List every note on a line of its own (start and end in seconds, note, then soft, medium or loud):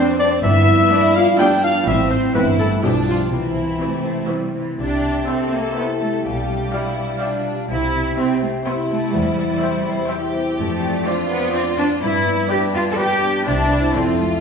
0.00 0.45 F2 medium
0.00 0.19 C4 medium
0.00 0.31 C4 medium
0.00 0.43 C4 medium
0.00 0.31 D4 medium
0.00 1.89 D4 medium
0.00 0.46 C5 medium
0.00 0.90 D5 medium
0.19 0.46 C4 medium
0.19 0.30 D4 medium
0.19 0.30 D5 loud
0.19 0.28 D5 medium
0.43 0.81 G1 medium
0.43 1.89 G2 medium
0.43 0.82 G2 medium
0.43 0.91 B3 medium
0.43 1.14 E4 medium
0.43 1.14 E5 medium
0.68 1.62 B3 medium
0.91 1.27 B3 medium
0.91 1.28 D4 medium
0.91 1.40 E4 medium
0.91 1.89 D5 medium
1.15 1.27 F4 medium
1.15 1.89 B4 medium
1.15 1.38 F5 medium
1.15 1.24 F5 medium
1.39 1.75 B3 medium
1.39 1.75 D4 medium
1.39 1.88 D4 medium
1.39 1.50 G4 medium
1.39 1.63 G5 medium
1.39 1.47 G5 medium
1.62 1.89 B3 medium
1.62 1.73 F4 medium
1.62 1.87 F5 medium
1.62 1.74 F5 medium
1.87 2.26 A1 medium
1.87 2.37 A2 medium
1.87 2.26 A2 medium
1.87 2.24 E3 medium
1.87 2.24 C4 medium
1.87 2.35 C4 medium
1.87 1.99 E4 medium
1.87 2.10 E5 medium
1.87 1.97 E5 medium
2.10 2.35 C4 medium
2.10 2.58 E4 soft
2.10 2.34 C5 medium
2.10 2.19 C5 medium
2.10 2.86 C5 medium
2.35 2.74 G1 medium
2.35 2.86 G2 medium
2.35 2.74 G2 medium
2.35 2.72 E3 medium
2.35 2.59 B3 medium
2.35 2.72 C4 medium
2.35 2.83 E4 medium
2.35 2.46 B4 medium
2.35 2.44 B4 medium
2.59 2.83 A3 medium
2.59 2.86 E4 soft
2.59 3.08 G4 soft
2.59 2.70 A4 medium
2.59 2.68 A4 medium
2.83 3.22 B1 medium
2.83 3.35 B2 medium
2.83 3.23 B2 medium
2.83 3.21 F3 medium
2.83 2.95 G3 medium
2.83 3.31 D4 medium
2.83 3.21 D4 medium
2.83 2.94 G4 medium
2.83 2.92 G4 medium
3.07 3.19 F3 medium
3.07 3.32 F4 medium
3.07 3.35 F4 soft
3.07 3.18 F4 medium
3.07 3.80 G4 soft
3.32 3.71 C2 medium
3.32 4.78 C3 soft
3.32 3.71 C3 medium
3.32 4.28 E3 medium
3.32 4.52 C4 soft
3.32 4.28 E4 medium
3.32 4.29 E4 medium
3.57 4.54 C4 soft
3.81 4.18 E3 soft
3.81 4.27 A3 medium
3.81 4.18 C4 medium
3.81 5.27 G4 soft
4.06 5.51 C5 soft
4.30 4.66 E3 soft
4.30 4.55 G3 soft
4.30 4.66 C4 medium
4.30 5.75 E4 soft
4.55 4.80 E3 soft
4.55 5.03 C4 soft
4.79 5.18 C2 medium
4.79 6.26 C3 soft
4.79 5.25 D4 medium
4.79 5.24 G4 soft
4.79 7.66 G4 medium
4.79 6.20 E5 medium
5.04 6.00 C4 soft
5.27 5.52 C4 medium
5.27 6.73 G4 soft
5.27 6.24 A4 medium
5.27 5.63 C5 soft
5.27 5.64 E5 soft
5.27 5.64 G5 soft
5.52 5.76 A#3 medium
5.52 6.26 C5 soft
5.75 5.84 B3 medium
5.75 6.27 E4 soft
5.75 6.12 C5 soft
5.75 6.12 E5 medium
5.75 6.11 G5 soft
6.00 6.24 A3 medium
6.00 6.27 C4 soft
6.24 6.63 B1 medium
6.24 7.72 B2 soft
6.24 7.43 G3 medium
6.24 6.73 G4 medium
6.24 7.67 F5 soft
6.50 7.45 D4 soft
6.73 7.22 E4 medium
6.73 8.17 G4 soft
6.73 7.09 D5 soft
6.73 7.09 F5 medium
6.73 7.09 G5 soft
6.98 7.72 D5 soft
7.21 7.71 D4 soft
7.21 7.72 F4 soft
7.21 7.57 D5 medium
7.21 7.57 F5 medium
7.21 7.57 G5 soft
7.46 7.72 D4 soft
7.69 8.08 C2 medium
7.69 9.17 C3 medium
7.69 8.65 C4 soft
7.69 8.14 E4 medium
7.69 9.11 G4 medium
7.69 10.54 E5 medium
7.95 8.89 C4 soft
8.17 8.42 C4 medium
8.17 9.62 G4 soft
8.17 8.54 C5 medium
8.17 8.54 E5 soft
8.17 8.53 G5 soft
8.42 8.50 A3 medium
8.42 9.87 C5 soft
8.66 8.74 B3 medium
8.66 10.10 E4 soft
8.66 10.08 E4 medium
8.66 9.03 C5 medium
8.66 9.03 E5 medium
8.66 9.02 G5 medium
8.90 9.14 A3 medium
8.90 9.38 C4 soft
9.14 10.60 E2 medium
9.14 9.52 E2 medium
9.14 10.35 G3 medium
9.14 10.57 C5 medium
9.39 10.34 C4 soft
9.62 10.60 G4 soft
9.62 9.98 C5 soft
9.62 9.98 E5 medium
9.62 9.98 G5 soft
9.88 11.28 C5 soft
10.10 10.60 E4 soft
10.10 11.06 G4 medium
10.10 10.46 C5 medium
10.10 10.46 E5 medium
10.10 10.46 G5 medium
10.35 10.81 C4 soft
10.58 10.96 F2 medium
10.58 12.04 F2 medium
10.58 11.26 A3 medium
10.58 11.98 C5 medium
10.58 13.30 D5 medium
10.82 11.77 C4 soft
11.05 11.52 D4 soft
11.05 12.02 F4 medium
11.05 11.42 C5 medium
11.05 11.42 D5 medium
11.05 11.41 F5 soft
11.29 11.53 B3 medium
11.29 12.04 C5 soft
11.53 11.61 C4 medium
11.53 12.98 D4 soft
11.53 11.89 C5 medium
11.53 11.89 D5 medium
11.53 11.89 F5 medium
11.78 12.04 C4 soft
11.78 11.86 D4 medium
12.01 12.40 G2 medium
12.01 13.48 G2 medium
12.01 12.49 E4 medium
12.01 13.30 B4 medium
12.26 13.22 B3 soft
12.50 13.45 D4 medium
12.50 12.58 G4 medium
12.50 13.71 G4 soft
12.50 12.86 B4 medium
12.50 12.86 D5 medium
12.74 12.81 F4 medium
12.74 13.49 B4 soft
12.92 12.98 A4 medium
12.98 13.49 D4 soft
12.98 13.46 G4 medium
12.98 13.34 B4 medium
12.98 13.34 D5 medium
13.23 13.49 B3 soft
13.46 13.85 C2 medium
13.46 13.97 C3 medium
13.46 13.94 D4 medium
13.46 13.93 E4 medium
13.46 13.82 G4 soft
13.46 13.82 C5 medium
13.46 13.92 C5 soft
13.46 13.92 E5 medium
13.46 13.83 E5 medium
13.71 14.19 E4 soft
13.71 13.97 G4 soft
13.95 14.33 F1 medium
13.95 14.40 F2 soft
13.95 14.19 C4 medium
13.95 14.40 F4 medium
13.95 14.40 A4 medium
13.95 14.32 A4 soft
13.95 14.32 C5 soft
13.95 14.31 E5 soft
13.95 14.40 E5 soft
14.20 14.28 A3 medium
14.20 14.40 E4 soft
14.20 14.40 A4 soft